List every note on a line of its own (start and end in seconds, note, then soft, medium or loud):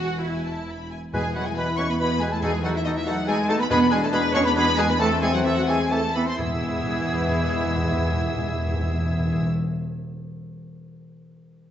0.00 0.91 E1 medium
0.00 0.42 E2 medium
0.00 0.91 E2 medium
0.00 0.23 F#4 loud
0.00 0.23 F#5 medium
0.00 0.22 G#5 medium
0.23 0.91 E4 medium
0.23 0.91 E5 medium
0.23 0.45 G#5 medium
0.47 0.69 A5 medium
0.70 0.92 B5 medium
0.91 0.99 G#5 medium
1.13 3.67 E2 medium
1.13 1.74 E2 loud
1.13 1.23 B2 medium
1.13 1.22 G#3 medium
1.13 2.39 B3 medium
1.13 1.23 E4 medium
1.13 2.39 E4 medium
1.13 1.34 G#4 medium
1.13 1.23 B4 medium
1.13 1.33 G#5 medium
1.13 1.34 G#5 medium
1.35 1.45 B2 medium
1.35 1.46 F#3 medium
1.35 1.45 E4 medium
1.35 1.46 F#4 medium
1.35 1.45 B4 medium
1.35 1.46 F#5 medium
1.35 1.47 F#5 medium
1.35 1.46 F#5 medium
1.46 1.57 G#3 medium
1.46 1.57 G#4 medium
1.46 1.56 G#5 medium
1.46 1.57 G#5 medium
1.46 1.51 G#5 medium
1.56 1.67 B2 medium
1.56 1.65 B3 medium
1.56 1.68 E4 medium
1.56 1.78 B4 medium
1.56 1.67 B4 medium
1.56 1.79 B5 medium
1.56 1.66 B5 medium
1.56 1.79 B5 medium
1.77 1.88 B2 medium
1.77 1.83 C#4 medium
1.77 1.89 E4 medium
1.77 1.88 B4 medium
1.77 1.82 C#5 medium
1.77 1.88 C#6 medium
1.77 1.90 C#6 medium
1.89 2.00 B3 medium
1.89 1.98 B4 medium
1.89 1.94 B5 medium
1.89 1.99 B5 medium
1.89 1.95 B5 loud
1.99 2.10 B2 medium
1.99 2.21 B3 medium
1.99 2.10 E4 medium
1.99 2.20 B4 medium
1.99 2.09 B4 medium
1.99 2.05 B5 medium
1.99 2.20 B5 loud
1.99 2.21 B5 medium
2.20 2.32 B2 medium
2.20 2.32 G#3 medium
2.20 2.32 E4 medium
2.20 2.31 G#4 medium
2.20 2.31 B4 medium
2.20 2.31 G#5 medium
2.20 2.25 G#5 medium
2.20 2.32 G#5 medium
2.31 2.43 A3 medium
2.31 2.42 A4 medium
2.31 2.36 A5 medium
2.31 2.43 A5 medium
2.31 2.37 A5 loud
2.42 3.03 E2 medium
2.42 2.53 B2 medium
2.42 2.65 G#3 medium
2.42 3.69 A3 medium
2.42 3.69 D#4 medium
2.42 2.53 D#4 medium
2.42 2.63 G#4 loud
2.42 2.52 A4 medium
2.42 2.50 G#5 medium
2.42 2.48 G#5 medium
2.42 2.64 G#5 medium
2.63 2.73 B2 medium
2.63 2.75 F#3 medium
2.63 2.75 D#4 medium
2.63 2.74 F#4 medium
2.63 2.74 A4 medium
2.63 2.68 F#5 medium
2.63 2.75 F#5 medium
2.63 2.69 F#5 medium
2.74 2.86 E3 medium
2.74 2.85 E4 medium
2.74 2.87 E5 medium
2.74 2.85 E5 medium
2.74 2.81 E5 loud
2.84 2.95 B2 medium
2.84 2.96 D#3 medium
2.84 2.89 D#4 medium
2.84 2.97 D#4 medium
2.84 2.95 A4 medium
2.84 2.89 D#5 loud
2.84 2.96 D#5 medium
2.95 3.07 E3 medium
2.95 3.00 E4 medium
2.95 3.06 E5 medium
2.95 3.07 E5 medium
3.06 3.16 B2 medium
3.06 3.28 F#3 loud
3.06 3.18 D#4 medium
3.06 3.14 F#4 medium
3.06 3.17 A4 medium
3.06 3.28 F#5 loud
3.06 3.29 F#5 medium
3.06 3.28 F#5 medium
3.26 3.37 B2 medium
3.26 3.50 G#3 loud
3.26 3.48 G#4 medium
3.26 3.38 A4 medium
3.26 3.49 G#5 loud
3.26 3.51 G#5 loud
3.26 3.36 G#5 loud
3.31 3.40 D#4 medium
3.49 3.58 B2 medium
3.49 3.60 A3 loud
3.49 3.60 D#4 medium
3.49 3.53 A4 medium
3.49 3.59 A4 medium
3.49 3.60 A5 loud
3.49 3.54 A5 loud
3.59 3.69 B3 loud
3.59 3.63 B4 loud
3.59 3.65 B5 medium
3.59 3.70 B5 medium
3.59 3.66 B5 loud
3.70 6.13 E2 medium
3.70 4.31 E2 loud
3.70 3.80 B2 medium
3.70 4.97 G#3 medium
3.70 3.92 B3 loud
3.70 4.97 D4 medium
3.70 3.80 D4 medium
3.70 3.80 G#4 medium
3.70 3.78 B4 loud
3.70 3.94 B5 loud
3.70 3.92 B5 loud
3.70 3.79 B5 loud
3.91 4.02 B2 medium
3.91 4.03 G#3 loud
3.91 4.01 D4 medium
3.91 4.02 G#4 loud
3.91 4.01 G#4 medium
3.91 3.96 G#5 loud
3.91 4.03 G#5 medium
3.91 4.04 G#5 medium
4.02 4.07 A3 loud
4.02 4.06 A4 medium
4.02 4.13 A5 medium
4.02 4.14 A5 loud
4.02 4.08 A5 loud
4.13 4.23 B2 medium
4.13 4.22 B3 loud
4.13 4.22 D4 medium
4.13 4.23 G#4 medium
4.13 4.34 B4 loud
4.13 4.35 B5 loud
4.13 4.19 B5 loud
4.13 4.21 B5 loud
4.34 4.45 B2 medium
4.34 4.39 C#4 loud
4.34 4.44 D4 medium
4.34 4.45 G#4 medium
4.34 4.45 C#5 loud
4.34 4.44 C#6 loud
4.34 4.39 C#6 loud
4.34 4.46 C#6 loud
4.44 4.56 B3 medium
4.44 4.55 B4 loud
4.44 4.50 B5 loud
4.44 4.51 B5 loud
4.55 4.66 B2 medium
4.55 4.78 B3 loud
4.55 4.66 D4 medium
4.55 4.67 G#4 medium
4.55 4.78 B4 loud
4.55 4.77 B5 loud
4.55 4.78 B5 loud
4.77 4.88 B2 medium
4.77 4.89 G#3 loud
4.77 4.88 D4 medium
4.77 4.88 G#4 medium
4.77 4.83 G#4 loud
4.77 4.88 G#5 loud
4.77 4.90 G#5 loud
4.89 5.00 B3 loud
4.89 4.94 B4 medium
4.89 5.00 B5 loud
4.89 4.99 B5 medium
4.89 5.01 B5 loud
4.99 5.10 E3 medium
4.99 5.22 A3 loud
4.99 6.15 A3 loud
4.99 5.09 C4 medium
4.99 6.15 C4 medium
4.99 5.22 A4 loud
4.99 5.11 A4 loud
4.99 5.06 A5 loud
4.99 5.08 A5 loud
4.99 5.22 A5 loud
5.21 5.32 E3 medium
5.21 5.27 G#3 medium
5.21 5.33 C4 medium
5.21 5.27 G#4 loud
5.21 5.32 A4 medium
5.21 5.33 G#5 loud
5.33 5.45 F#3 loud
5.33 5.44 F#4 medium
5.33 5.38 F#5 medium
5.33 5.45 F#5 medium
5.33 5.39 F#5 loud
5.44 5.55 E3 medium
5.44 5.56 E3 loud
5.44 5.55 C4 medium
5.44 5.56 E4 medium
5.44 5.56 A4 medium
5.44 5.49 E5 loud
5.44 5.50 E5 loud
5.44 5.56 E5 loud
5.55 5.68 F#3 medium
5.55 5.61 F#4 medium
5.55 5.67 F#5 medium
5.55 5.62 F#5 loud
5.55 5.68 F#5 loud
5.67 5.78 E3 medium
5.67 5.91 G#3 medium
5.67 5.78 C4 medium
5.67 5.91 G#4 medium
5.67 5.79 A4 medium
5.67 5.91 G#5 loud
5.67 5.94 G#5 loud
5.67 5.92 G#5 loud
5.91 6.02 E3 medium
5.91 6.15 A3 loud
5.91 6.02 C4 medium
5.91 6.02 A4 medium
5.91 6.15 A4 medium
5.91 6.15 A5 loud
5.91 6.14 A5 loud
6.14 6.27 E3 medium
6.14 6.27 B3 medium
6.14 6.26 C4 medium
6.14 6.27 A4 medium
6.14 6.27 B4 medium
6.14 6.27 B5 medium
6.14 6.28 B5 loud
6.14 6.20 B5 loud
6.26 6.39 C4 medium
6.26 6.39 C5 medium
6.26 6.39 C6 medium
6.26 6.40 C6 medium
6.39 6.46 E2 medium
6.39 9.47 E2 medium
6.39 9.46 E3 medium
6.39 9.47 E3 medium
6.39 9.47 G#3 medium
6.39 9.46 B3 medium
6.39 9.47 E4 medium
6.39 9.47 G#4 medium
6.39 9.46 E5 medium
6.39 9.47 E5 medium
6.39 9.47 E6 medium
6.46 6.54 E2 medium
6.54 6.61 E2 medium
6.61 6.69 E2 medium
6.69 6.76 E2 medium
6.76 6.83 E2 medium
6.83 6.91 E2 medium
6.91 6.99 E2 medium
6.99 7.06 E2 medium
7.06 7.14 E2 medium
7.14 7.21 E2 medium
7.21 7.29 E2 medium
7.29 7.36 E2 medium
7.37 7.44 E2 medium
7.44 7.52 E2 medium
7.52 7.60 E2 medium
7.60 7.67 E2 medium
7.67 7.75 E2 medium
7.75 7.83 E2 medium
7.83 7.91 E2 medium
7.91 7.98 E2 medium
7.98 8.06 E2 medium
8.06 8.13 E2 medium
8.13 8.20 E2 medium
8.20 8.28 E2 medium
8.28 8.36 E2 medium
8.36 8.43 E2 medium
8.43 8.51 E2 medium
8.51 8.58 E2 medium
8.58 8.66 E2 medium
8.66 8.73 E2 medium
8.73 8.80 E2 medium
8.80 8.88 E2 medium
8.88 8.95 E2 medium
8.95 9.02 E2 medium
9.02 9.09 E2 medium
9.09 9.17 E2 medium
9.17 9.25 E2 medium
9.25 9.32 E2 medium
9.33 9.40 E2 medium
9.40 9.48 E2 medium